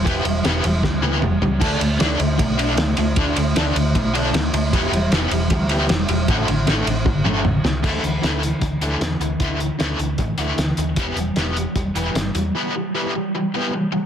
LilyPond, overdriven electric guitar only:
\new Staff \with { instrumentName = "Overdriven electric guitar" } { \clef bass \time 4/4 \key e \dorian \tempo 4 = 154 <e g b>8 <e g>8 <e g b>8 <e g>8 <e g>8 <e g b>8 <e g>8 <e g>8 | <d a d'>8 <d a>8 <d a d'>8 <d a>8 <d a>8 <d a d'>8 <d a>8 <d a>8 | <d a d'>8 <d a>8 <d a d'>8 <d a>8 <d a>8 <d a d'>8 <d a>8 <d a>8 | <e g b>8 <e g>8 <e g b>8 <e g>8 <e g>8 <e g b>8 <e g>8 <e g>8 |
<a, d a>8 <a, d>8 <a, d a>8 <a, d>8 <a, d>8 <a, d a>8 <a, d>8 <a, d>8 | <d e a>8 <d e>8 <d e a>8 <d e>8 <d e>8 <d e a>8 <d e>8 <d e>8 | <d e a>8 <d e>8 <d e a>8 <d e>8 <d e>8 <d e a>8 <d e>8 <d e>8 | <e g b>8 <e g>8 <e g b>8 <e g>8 <e g>8 <e g b>8 <e g>8 <e g>8 |
<e g b>8 <e g>8 <e g b>8 <e g>8 <e g>8 <e g b>8 <e g>8 <e g>8 | }